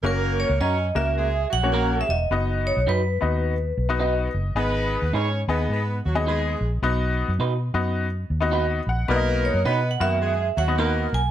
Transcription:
0.03 0.43 F#1 medium
0.03 0.56 A#3 loud
0.03 0.50 A#3 medium
0.03 0.50 C#4 medium
0.03 0.50 F#4 medium
0.03 0.57 A#4 loud
0.03 0.41 A#4 medium
0.03 0.50 C#5 medium
0.40 0.59 C#5 medium
0.49 0.59 C#2 medium
0.60 0.91 F#2 loud
0.60 0.74 C#4 medium
0.60 0.89 C#4 medium
0.60 0.74 F#4 medium
0.60 0.74 A#4 medium
0.60 0.89 C#5 loud
0.60 0.93 D#5 medium
0.95 1.44 C#2 medium
0.95 1.12 A#3 medium
0.95 1.26 A#3 medium
0.95 1.26 C#4 medium
0.95 1.26 F#4 medium
0.95 1.13 A#4 medium
0.95 1.26 A#4 medium
0.95 1.48 E5 medium
1.17 1.45 G#3 medium
1.17 1.45 G#4 medium
1.51 2.02 A#1 medium
1.51 1.68 F#3 medium
1.51 1.68 F#4 medium
1.51 2.02 F#5 loud
1.63 2.01 A#3 medium
1.63 2.01 C#4 medium
1.63 2.01 F#4 medium
1.63 2.01 C#5 medium
1.72 2.16 A#3 medium
1.72 1.87 C#4 medium
1.72 1.87 F#4 medium
1.72 2.16 A#4 loud
1.72 1.87 A#4 medium
2.01 2.09 E5 medium
2.09 2.27 E1 medium
2.09 2.68 D#5 medium
2.31 2.70 F#1 medium
2.31 2.77 B3 medium
2.31 2.77 D#4 medium
2.31 2.77 F#4 medium
2.31 2.78 D#5 medium
2.67 2.88 C#5 medium
2.77 2.86 B1 medium
2.87 3.18 F#2 medium
2.87 3.00 D#4 medium
2.87 3.00 F#4 medium
2.87 3.01 B4 medium
2.87 4.32 B4 medium
3.21 3.71 D#2 medium
3.21 3.52 B3 medium
3.21 3.52 D#4 medium
3.21 3.53 F#4 medium
3.21 3.53 D#5 medium
3.77 4.27 B1 medium
3.89 4.27 B3 medium
3.89 4.27 D#4 medium
3.89 4.27 F#4 medium
3.89 3.99 D#5 medium
4.00 4.13 D#4 medium
4.00 4.13 F#4 medium
4.00 4.14 B4 medium
4.00 4.53 D#5 medium
4.34 4.53 F#1 medium
4.55 4.96 G#1 medium
4.55 5.02 B3 medium
4.55 5.11 B3 loud
4.55 5.02 D#4 medium
4.55 5.03 G#4 medium
4.55 5.11 B4 loud
4.55 5.03 D#5 medium
5.02 5.12 D#2 medium
5.13 5.44 G#2 medium
5.13 5.42 C#4 medium
5.13 5.27 D#4 medium
5.13 5.27 G#4 medium
5.13 5.27 B4 medium
5.13 5.42 C#5 loud
5.48 5.67 D#2 medium
5.48 5.79 B3 medium
5.48 5.66 B3 medium
5.48 5.79 D#4 medium
5.48 5.79 G#4 medium
5.48 5.66 B4 medium
5.48 5.80 D#5 medium
5.69 6.00 G#2 medium
5.69 5.99 B3 medium
5.69 6.00 B4 medium
6.06 6.54 D#2 medium
6.06 6.23 F#3 medium
6.06 6.23 F#4 medium
6.15 6.53 B3 medium
6.15 6.53 D#4 medium
6.15 6.53 G#4 medium
6.15 6.53 D#5 medium
6.27 6.70 G#3 medium
6.27 6.40 D#4 medium
6.27 6.70 G#4 loud
6.27 6.40 G#4 medium
6.27 6.41 B4 medium
6.61 6.80 A#1 medium
6.82 7.22 B1 medium
6.82 7.29 B3 medium
6.82 7.29 D#4 medium
6.82 7.29 F#4 medium
6.82 7.29 D#5 medium
7.28 7.38 F#2 medium
7.39 7.69 B2 medium
7.39 7.53 D#4 medium
7.39 7.53 F#4 medium
7.39 7.53 B4 medium
7.74 8.23 F#2 medium
7.74 8.05 B3 medium
7.74 8.05 D#4 medium
7.74 8.05 F#4 medium
7.74 8.05 D#5 medium
8.30 8.80 D#2 medium
8.40 8.79 B3 medium
8.40 8.79 D#4 medium
8.40 8.79 F#4 medium
8.40 8.79 D#5 medium
8.51 8.65 D#4 medium
8.51 8.66 F#4 medium
8.51 8.66 B4 medium
8.51 8.85 B5 medium
8.87 9.06 A#1 medium
8.87 9.08 F#5 medium
9.08 9.49 B1 medium
9.08 9.63 A#3 loud
9.08 9.55 B3 medium
9.08 9.55 D#4 medium
9.08 9.55 F#4 medium
9.08 9.62 A#4 loud
9.08 9.45 B4 medium
9.08 9.17 D5 medium
9.16 9.59 D#5 medium
9.45 9.65 C#5 medium
9.54 9.64 F#2 medium
9.65 9.96 B2 medium
9.65 9.94 B3 medium
9.65 9.79 D#4 medium
9.65 9.79 F#4 medium
9.65 9.93 B4 loud
9.65 9.79 B4 medium
9.65 9.90 D#5 medium
9.91 10.00 F#5 medium
10.00 10.49 F#2 medium
10.00 10.31 D#3 medium
10.00 10.17 A#3 medium
10.00 10.31 B3 medium
10.00 10.31 F#4 medium
10.00 10.17 A#4 medium
10.00 10.59 E5 medium
10.00 10.31 F#5 medium
10.21 10.49 G#3 medium
10.21 10.49 G#4 medium
10.56 11.06 D#2 medium
10.56 10.74 F#3 medium
10.56 10.74 F#4 medium
10.56 11.10 F#5 medium
10.68 11.05 B3 medium
10.68 11.05 D#4 medium
10.68 11.05 F#4 medium
10.68 11.06 D#5 medium
10.77 11.21 A#3 medium
10.77 10.92 D#4 medium
10.77 10.92 F#4 medium
10.77 11.21 A#4 loud
10.77 10.92 B4 medium
11.13 11.31 B1 medium
11.13 11.31 G#5 medium

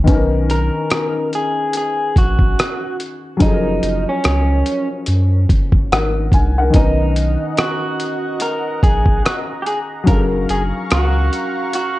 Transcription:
0.04 3.35 D#3 medium
0.04 3.36 B3 medium
0.04 kick loud
0.04 closed hi-hat medium
0.08 0.70 B1 medium
0.08 3.37 C#4 medium
0.08 3.39 D#4 medium
0.13 3.40 A#4 medium
0.50 1.29 A#4 loud
0.50 closed hi-hat medium
0.90 cross-stick loud
0.90 closed hi-hat medium
1.33 1.76 G#4 medium
1.33 closed hi-hat medium
1.73 2.18 G#4 medium
1.73 closed hi-hat loud
2.16 2.55 A#1 medium
2.16 2.96 F#4 medium
2.16 kick medium
2.16 closed hi-hat medium
2.39 kick loud
2.59 cross-stick loud
2.59 closed hi-hat medium
3.00 closed hi-hat medium
3.37 6.68 F#3 medium
3.37 6.70 C#4 soft
3.37 kick loud
3.37 closed hi-hat medium
3.41 3.79 F#1 medium
3.41 6.71 F3 medium
3.41 4.04 D#4 loud
3.41 6.72 G#4 medium
3.47 3.52 A4 medium
3.53 5.91 A#4 medium
3.83 4.05 F#1 loud
3.83 closed hi-hat medium
4.09 4.87 C#4 loud
4.24 4.63 C#2 loud
4.24 cross-stick loud
4.24 closed hi-hat medium
4.66 closed hi-hat medium
5.06 5.46 F#2 loud
5.06 closed hi-hat medium
5.49 5.88 F#1 medium
5.49 kick medium
5.49 closed hi-hat medium
5.72 kick loud
5.92 6.30 G#1 loud
5.92 6.32 A#4 medium
5.92 6.31 F#5 medium
5.92 cross-stick loud
5.92 closed hi-hat medium
6.32 6.71 C2 medium
6.32 6.57 G#5 medium
6.32 kick loud
6.32 closed hi-hat medium
6.58 6.78 A#4 medium
6.58 6.97 F#5 medium
6.70 10.02 D#3 medium
6.70 10.03 B3 medium
6.70 closed hi-hat medium
6.74 7.37 B1 medium
6.74 10.04 C#4 medium
6.74 7.61 D#4 medium
6.74 10.05 D#4 medium
6.74 10.04 D#5 medium
6.74 10.04 F#5 medium
6.74 11.99 A#5 medium
6.74 kick loud
6.80 10.06 A#4 medium
7.16 closed hi-hat medium
7.57 8.42 F#4 medium
7.57 cross-stick loud
7.57 closed hi-hat medium
8.00 closed hi-hat medium
8.40 8.83 A#4 medium
8.40 closed hi-hat loud
8.83 9.21 A#1 medium
8.83 9.25 G#4 medium
8.83 kick medium
8.83 closed hi-hat medium
9.06 kick loud
9.25 9.35 F#4 medium
9.25 cross-stick loud
9.25 closed hi-hat medium
9.62 9.66 G4 medium
9.66 9.78 G#4 medium
9.66 closed hi-hat medium
10.04 11.99 F#3 medium
10.04 11.99 C#4 medium
10.04 kick loud
10.04 closed hi-hat medium
10.08 10.46 F#1 medium
10.08 11.99 G#4 soft
10.08 10.19 A#4 loud
10.08 11.99 F5 medium
10.08 11.99 C#6 medium
10.13 10.18 A4 soft
10.20 11.99 A#4 medium
10.49 10.72 F#1 loud
10.49 10.62 G#4 medium
10.49 closed hi-hat medium
10.90 11.30 C#2 loud
10.90 11.74 F#4 medium
10.90 cross-stick loud
10.90 closed hi-hat medium
11.33 closed hi-hat medium
11.73 11.99 F#4 medium
11.73 closed hi-hat loud

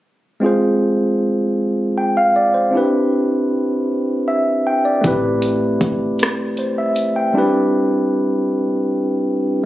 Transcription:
0.40 2.68 G#3 medium
0.40 2.69 C4 medium
0.40 2.70 F4 soft
0.44 2.70 G#4 soft
0.44 1.95 C5 medium
1.98 2.16 G5 soft
2.17 2.35 F5 medium
2.36 2.54 D5 medium
2.54 2.91 C5 soft
2.71 4.99 C4 medium
2.71 5.00 D4 soft
2.71 5.01 E4 soft
2.75 5.01 G4 soft
2.75 5.02 B4 medium
4.28 4.64 E5 medium
4.67 4.85 G5 soft
4.85 5.22 D5 soft
5.01 7.32 A1 medium
5.01 7.30 A3 medium
5.01 7.31 C4 medium
5.01 7.31 E4 medium
5.01 kick medium
5.01 closed hi-hat medium
5.06 7.32 G4 medium
5.06 6.57 B4 medium
5.42 closed hi-hat soft
5.81 kick medium
5.81 closed hi-hat medium
6.19 cross-stick medium
6.19 closed hi-hat soft
6.57 6.77 C5 soft
6.57 closed hi-hat soft
6.78 7.14 E5 medium
6.96 closed hi-hat medium
7.16 7.53 G5 soft
7.33 9.61 G3 medium
7.33 9.61 C4 medium
7.33 9.62 D4 medium
7.33 9.63 E4 medium
7.37 9.63 G4 medium
7.37 9.64 B4 medium

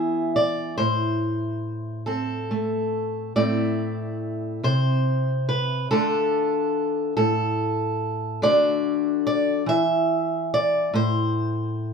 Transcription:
0.00 0.78 E3 medium
0.00 0.74 B3 soft
0.00 2.07 E4 soft
0.00 0.74 G#4 soft
0.00 0.35 E5 medium
0.36 0.77 D5 medium
0.78 3.35 A2 medium
0.78 2.06 C5 medium
2.06 3.36 C4 soft
2.06 3.36 A4 medium
2.51 3.32 A3 medium
3.36 4.63 A2 medium
3.36 4.59 A3 soft
3.36 5.90 C4 soft
3.36 5.91 E4 soft
3.36 4.64 D5 medium
4.63 5.85 C3 medium
4.63 5.48 C5 medium
5.49 5.90 B4 medium
5.91 7.17 D3 medium
5.91 7.12 A3 soft
5.91 7.12 D4 soft
5.91 7.13 F4 medium
5.91 7.15 A4 medium
7.17 8.42 A2 medium
7.17 8.42 A4 medium
8.42 9.67 D3 medium
8.42 9.62 A3 medium
8.42 9.63 D4 medium
8.42 9.63 F#4 medium
8.42 9.25 D5 loud
9.27 9.68 D5 loud
9.66 10.93 E3 medium
9.66 10.52 E5 loud
10.54 10.95 D5 loud
10.94 11.94 A2 medium
10.94 11.94 C5 medium

